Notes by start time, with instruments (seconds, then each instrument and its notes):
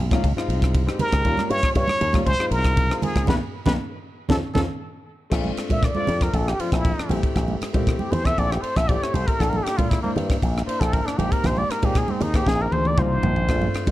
Already playing: slap bass B1
0.10 grand piano A#3 C#4 D#4 F4, kick, cross-stick, ride, high conga
0.23 slap bass C#2, kick, ride
0.36 grand piano G#3 C4 D#4 F4, muted slap bass stroke, cross-stick
0.48 slap bass C2, ride
0.62 kick, cross-stick, ride
0.75 kick, ride
0.86 grand piano G#3 C4 D#4 G4, cross-stick
0.99 muted trumpet A#4, muted slap bass stroke, ride, high conga, low conga
1.12 slap bass C#2, kick, cross-stick, ride
1.25 slap bass D#2, grand piano G3 A#3 C#4 F4, kick, ride
1.37 cross-stick, high conga
1.50 slap bass G2, muted trumpet C#5, ride
1.63 kick, cross-stick, ride
1.75 slap bass G2, muted trumpet C#5, kick, ride
1.88 cross-stick, high conga
2.01 slap bass D#2, ride, low conga
2.13 grand piano G3 A#3 C#4 F4, kick, cross-stick, ride, high conga
2.25 slap bass C#2, muted trumpet C5, kick, ride
2.38 grand piano G#3 C4 D#4 F4, muted slap bass stroke, cross-stick
2.51 slap bass C2, muted trumpet A#4, ride
2.64 kick, cross-stick, ride
2.77 kick, ride
2.90 grand piano G#3 C4 D#4 F4, cross-stick
3.02 muted trumpet G#4, muted slap bass stroke, ride, high conga, low conga
3.16 slap bass C#2, kick, cross-stick, ride
3.27 slap bass B1, grand piano A#3 B3 D#4, muted trumpet B4, kick, snare, low conga
3.66 slap bass B1, grand piano A#3 B3 D#4, muted trumpet B4, kick, snare, low conga
4.29 slap bass F2, grand piano C#4 D#4 F4, muted trumpet A4, kick, snare, low conga
4.54 slap bass F2, grand piano C#4 D#4 F4, muted trumpet A4, kick, snare, low conga
5.30 slap bass A#1, grand piano A3 C4 D4 F4, kick, cross-stick, crash
5.44 high conga
5.57 muted slap bass stroke, cross-stick, ride
5.69 slap bass A#2, muted trumpet E5, kick, ride, high conga
5.83 muted trumpet D5, kick, cross-stick, ride
5.95 grand piano A3 C4 D4 F4, high conga
6.07 slap bass F2, ride, low conga
6.21 muted trumpet A#4, kick, cross-stick, ride
6.34 slap bass A#1, muted trumpet A4, kick, ride
6.48 muted trumpet G4, cross-stick
6.59 grand piano F3 A3 C4 D4, muted trumpet F4, muted slap bass stroke, ride
6.72 slap bass A#1, muted trumpet E4, kick, cross-stick, ride
6.85 kick, ride
6.97 muted slap bass stroke, cross-stick
7.09 slap bass A#1, grand piano A3 C4 E4 G4, ride, high conga, low conga
7.23 kick, ride
7.36 slap bass A#1, kick, cross-stick, ride
7.48 high conga
7.61 muted slap bass stroke, cross-stick, ride
7.73 slap bass A#2, grand piano A3 C4 E4 G4, kick, ride, high conga
7.87 kick, cross-stick, ride
7.99 muted trumpet G4, high conga
8.12 slap bass E2, muted trumpet C5, ride, low conga
8.25 grand piano A3 C4 E4 A4, muted trumpet E5, kick, cross-stick, ride
8.38 slap bass A#1, muted trumpet D5, kick, ride
8.52 muted trumpet G4, cross-stick
8.62 muted trumpet C5, muted slap bass stroke, ride
8.76 slap bass A#1, muted trumpet E5, kick, cross-stick, ride
8.88 grand piano A3 C4 E4 G4, muted trumpet D5, kick, ride
9.02 muted trumpet C#5, muted slap bass stroke, cross-stick
9.14 slap bass C2, muted trumpet C5, ride, high conga, low conga
9.27 muted trumpet A#4, kick, ride
9.39 slap bass A#1, grand piano A#3 D4 E4 A4, muted trumpet A4, kick, cross-stick, ride
9.49 muted trumpet A#4, high conga
9.57 muted trumpet A4
9.63 muted trumpet G4, ride
9.68 cross-stick
9.77 slap bass A#2, muted trumpet F4, kick, ride, high conga
9.90 muted trumpet E4, kick, cross-stick, ride
10.03 muted trumpet A#3, grand piano A#3 D4 E4 C5, high conga
10.16 slap bass G2, ride, low conga
10.30 kick, cross-stick, ride
10.42 slap bass A#1, kick, ride
10.58 cross-stick
10.66 grand piano A#3 D4 E4 C5, muted trumpet C5, muted slap bass stroke, ride
10.80 slap bass A#1, muted trumpet A4, kick, cross-stick, ride
10.93 muted trumpet A#4, kick, ride
11.06 muted trumpet D4, muted slap bass stroke, cross-stick
11.18 slap bass A#1, grand piano A#3 C4 D#4 G4, muted trumpet G4, ride, high conga, low conga
11.32 muted trumpet A#4, kick, ride
11.44 slap bass A#1, muted trumpet C5, kick, cross-stick, ride, low conga
11.57 muted trumpet D5, high conga
11.69 muted trumpet A#4, muted slap bass stroke, cross-stick, ride
11.82 slap bass A#2, grand piano A#3 C4 D#4 G#4, muted trumpet G4, kick, ride, high conga
11.95 muted trumpet G#4, kick, cross-stick, ride
12.08 muted trumpet C4, high conga
12.20 slap bass D#2, muted trumpet D#4, ride, low conga
12.34 grand piano A#3 C4 D#4 G#4, muted trumpet G4, kick, cross-stick, ride
12.46 slap bass A#1, muted trumpet G#4, kick, snare
12.62 muted trumpet A#4
12.72 slap bass D2, muted trumpet C5, high tom
12.85 muted trumpet D5, high tom
12.98 slap bass C2, grand piano A#3 C4 D#4 F4, muted trumpet C5, kick, mid tom
13.23 slap bass A#1, floor tom, high conga, low conga
13.36 floor tom
13.48 slap bass A#1, grand piano A3 C4 D4 F4, kick, cross-stick, ride
13.62 high conga
13.74 muted slap bass stroke, cross-stick, ride
13.87 slap bass A#2, kick, ride, high conga